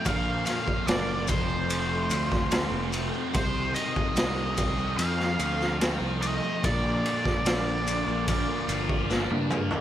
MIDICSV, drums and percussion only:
0, 0, Header, 1, 2, 480
1, 0, Start_track
1, 0, Tempo, 821918
1, 33, Time_signature, 4, 2, 24, 8
1, 5727, End_track
2, 0, Start_track
2, 0, Title_t, "Drums"
2, 28, Note_on_c, 9, 70, 80
2, 33, Note_on_c, 9, 51, 83
2, 35, Note_on_c, 9, 36, 94
2, 87, Note_off_c, 9, 70, 0
2, 92, Note_off_c, 9, 51, 0
2, 93, Note_off_c, 9, 36, 0
2, 266, Note_on_c, 9, 70, 87
2, 273, Note_on_c, 9, 51, 70
2, 277, Note_on_c, 9, 38, 31
2, 325, Note_off_c, 9, 70, 0
2, 331, Note_off_c, 9, 51, 0
2, 335, Note_off_c, 9, 38, 0
2, 391, Note_on_c, 9, 70, 29
2, 395, Note_on_c, 9, 36, 71
2, 449, Note_off_c, 9, 70, 0
2, 453, Note_off_c, 9, 36, 0
2, 510, Note_on_c, 9, 70, 71
2, 515, Note_on_c, 9, 51, 99
2, 519, Note_on_c, 9, 38, 126
2, 568, Note_off_c, 9, 70, 0
2, 573, Note_off_c, 9, 51, 0
2, 577, Note_off_c, 9, 38, 0
2, 745, Note_on_c, 9, 70, 106
2, 754, Note_on_c, 9, 36, 99
2, 755, Note_on_c, 9, 51, 68
2, 803, Note_off_c, 9, 70, 0
2, 813, Note_off_c, 9, 36, 0
2, 813, Note_off_c, 9, 51, 0
2, 870, Note_on_c, 9, 70, 27
2, 928, Note_off_c, 9, 70, 0
2, 989, Note_on_c, 9, 70, 74
2, 994, Note_on_c, 9, 51, 88
2, 1048, Note_off_c, 9, 70, 0
2, 1053, Note_off_c, 9, 51, 0
2, 1226, Note_on_c, 9, 70, 90
2, 1232, Note_on_c, 9, 51, 69
2, 1285, Note_off_c, 9, 70, 0
2, 1290, Note_off_c, 9, 51, 0
2, 1350, Note_on_c, 9, 70, 28
2, 1353, Note_on_c, 9, 36, 82
2, 1355, Note_on_c, 9, 38, 35
2, 1408, Note_off_c, 9, 70, 0
2, 1412, Note_off_c, 9, 36, 0
2, 1414, Note_off_c, 9, 38, 0
2, 1466, Note_on_c, 9, 70, 78
2, 1469, Note_on_c, 9, 51, 95
2, 1473, Note_on_c, 9, 38, 115
2, 1525, Note_off_c, 9, 70, 0
2, 1528, Note_off_c, 9, 51, 0
2, 1532, Note_off_c, 9, 38, 0
2, 1708, Note_on_c, 9, 70, 88
2, 1714, Note_on_c, 9, 51, 62
2, 1766, Note_off_c, 9, 70, 0
2, 1772, Note_off_c, 9, 51, 0
2, 1829, Note_on_c, 9, 70, 26
2, 1887, Note_off_c, 9, 70, 0
2, 1949, Note_on_c, 9, 70, 65
2, 1953, Note_on_c, 9, 51, 87
2, 1955, Note_on_c, 9, 36, 115
2, 2007, Note_off_c, 9, 70, 0
2, 2011, Note_off_c, 9, 51, 0
2, 2013, Note_off_c, 9, 36, 0
2, 2188, Note_on_c, 9, 70, 83
2, 2195, Note_on_c, 9, 51, 67
2, 2246, Note_off_c, 9, 70, 0
2, 2254, Note_off_c, 9, 51, 0
2, 2313, Note_on_c, 9, 70, 27
2, 2315, Note_on_c, 9, 36, 76
2, 2372, Note_off_c, 9, 70, 0
2, 2373, Note_off_c, 9, 36, 0
2, 2428, Note_on_c, 9, 70, 69
2, 2434, Note_on_c, 9, 51, 98
2, 2438, Note_on_c, 9, 38, 112
2, 2487, Note_off_c, 9, 70, 0
2, 2492, Note_off_c, 9, 51, 0
2, 2496, Note_off_c, 9, 38, 0
2, 2670, Note_on_c, 9, 70, 95
2, 2672, Note_on_c, 9, 51, 71
2, 2675, Note_on_c, 9, 36, 80
2, 2729, Note_off_c, 9, 70, 0
2, 2730, Note_off_c, 9, 51, 0
2, 2733, Note_off_c, 9, 36, 0
2, 2795, Note_on_c, 9, 70, 27
2, 2853, Note_off_c, 9, 70, 0
2, 2912, Note_on_c, 9, 51, 81
2, 2912, Note_on_c, 9, 70, 68
2, 2970, Note_off_c, 9, 70, 0
2, 2971, Note_off_c, 9, 51, 0
2, 3036, Note_on_c, 9, 38, 35
2, 3094, Note_off_c, 9, 38, 0
2, 3150, Note_on_c, 9, 51, 58
2, 3151, Note_on_c, 9, 70, 94
2, 3209, Note_off_c, 9, 51, 0
2, 3209, Note_off_c, 9, 70, 0
2, 3272, Note_on_c, 9, 70, 24
2, 3277, Note_on_c, 9, 38, 31
2, 3331, Note_off_c, 9, 70, 0
2, 3335, Note_off_c, 9, 38, 0
2, 3394, Note_on_c, 9, 51, 84
2, 3395, Note_on_c, 9, 70, 72
2, 3398, Note_on_c, 9, 38, 106
2, 3453, Note_off_c, 9, 51, 0
2, 3454, Note_off_c, 9, 70, 0
2, 3457, Note_off_c, 9, 38, 0
2, 3635, Note_on_c, 9, 51, 56
2, 3637, Note_on_c, 9, 70, 92
2, 3693, Note_off_c, 9, 51, 0
2, 3696, Note_off_c, 9, 70, 0
2, 3757, Note_on_c, 9, 70, 27
2, 3816, Note_off_c, 9, 70, 0
2, 3874, Note_on_c, 9, 70, 63
2, 3878, Note_on_c, 9, 36, 111
2, 3878, Note_on_c, 9, 51, 85
2, 3933, Note_off_c, 9, 70, 0
2, 3936, Note_off_c, 9, 36, 0
2, 3936, Note_off_c, 9, 51, 0
2, 4120, Note_on_c, 9, 51, 61
2, 4179, Note_off_c, 9, 51, 0
2, 4232, Note_on_c, 9, 70, 25
2, 4237, Note_on_c, 9, 36, 77
2, 4241, Note_on_c, 9, 38, 32
2, 4290, Note_off_c, 9, 70, 0
2, 4295, Note_off_c, 9, 36, 0
2, 4299, Note_off_c, 9, 38, 0
2, 4352, Note_on_c, 9, 70, 61
2, 4357, Note_on_c, 9, 51, 98
2, 4361, Note_on_c, 9, 38, 123
2, 4411, Note_off_c, 9, 70, 0
2, 4415, Note_off_c, 9, 51, 0
2, 4419, Note_off_c, 9, 38, 0
2, 4598, Note_on_c, 9, 70, 91
2, 4599, Note_on_c, 9, 51, 66
2, 4656, Note_off_c, 9, 70, 0
2, 4657, Note_off_c, 9, 51, 0
2, 4719, Note_on_c, 9, 70, 26
2, 4778, Note_off_c, 9, 70, 0
2, 4834, Note_on_c, 9, 51, 90
2, 4835, Note_on_c, 9, 36, 76
2, 4837, Note_on_c, 9, 70, 63
2, 4892, Note_off_c, 9, 51, 0
2, 4893, Note_off_c, 9, 36, 0
2, 4895, Note_off_c, 9, 70, 0
2, 5074, Note_on_c, 9, 51, 58
2, 5074, Note_on_c, 9, 70, 88
2, 5132, Note_off_c, 9, 51, 0
2, 5133, Note_off_c, 9, 70, 0
2, 5194, Note_on_c, 9, 36, 75
2, 5253, Note_off_c, 9, 36, 0
2, 5315, Note_on_c, 9, 70, 69
2, 5317, Note_on_c, 9, 38, 62
2, 5374, Note_off_c, 9, 70, 0
2, 5376, Note_off_c, 9, 38, 0
2, 5433, Note_on_c, 9, 48, 58
2, 5491, Note_off_c, 9, 48, 0
2, 5550, Note_on_c, 9, 45, 80
2, 5553, Note_on_c, 9, 70, 82
2, 5608, Note_off_c, 9, 45, 0
2, 5611, Note_off_c, 9, 70, 0
2, 5669, Note_on_c, 9, 43, 93
2, 5675, Note_on_c, 9, 70, 26
2, 5727, Note_off_c, 9, 43, 0
2, 5727, Note_off_c, 9, 70, 0
2, 5727, End_track
0, 0, End_of_file